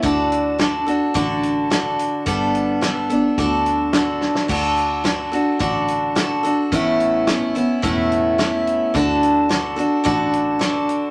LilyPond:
<<
  \new Staff \with { instrumentName = "Steel-string acoustic guitar" } { \time 4/4 \key d \major \tempo 4 = 108 <d d' fis' a'>4 <d d' fis' a'>8 <d' fis' a'>8 <d d' fis' a'>4 <d d' fis' a'>4 | <g b d' a'>4 <g b d' a'>8 <b d' a'>8 <d d' fis' a'>4 <d d' fis' a'>4 | <d d' fis' a'>4 <d d' fis' a'>8 <d' fis' a'>8 <d d' fis' a'>4 <d d' fis' a'>8 <d' fis' a'>8 | <a, a b cis' e'>4 <a b cis' e'>8 <b cis' e'>8 <a, a b cis' e'>4 <a b cis' e'>4 |
<d d' fis' a'>4 <d d' fis' a'>8 <d' fis' a'>8 <d d' fis' a'>4 <d d' fis' a'>4 | }
  \new Staff \with { instrumentName = "Fingered electric bass" } { \clef bass \time 4/4 \key d \major d,2 a,,2 | g,,2 d,2 | d,2 a,,2 | a,,2 e,,2 |
d,2 a,,2 | }
  \new DrumStaff \with { instrumentName = "Drums" } \drummode { \time 4/4 <hh bd>8 hh8 <hh sn>8 hh8 <hh bd>8 hh8 <hh sn>8 hh8 | <hh bd>8 hh8 <hh sn>8 hh8 <hh bd>8 hh8 <hh sn>8 sn16 sn16 | <cymc bd>8 hh8 <hh sn>8 hh8 <hh bd>8 hh8 <hh sn>8 hh8 | <hh bd>8 hh8 <hh sn>8 hh8 <hh bd>8 hh8 <hh sn>8 hh8 |
<hh bd>8 hh8 <hh sn>8 hh8 <hh bd>8 hh8 <hh sn>8 hh8 | }
>>